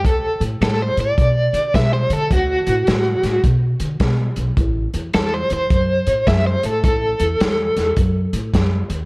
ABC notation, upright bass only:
X:1
M:4/4
L:1/8
Q:"Swing" 1/4=106
K:D
V:1 name="Upright bass" clef=bass
D,, A,, A,, A,, B,, D, B,, D, | D,, A,, A,, A,, B,, D, B,, B,,, | A,,, E,, E,, E,, F,, A,, F,, A,, | A,,, E,, E,, E,, F,, A,, F,, ^D,, |]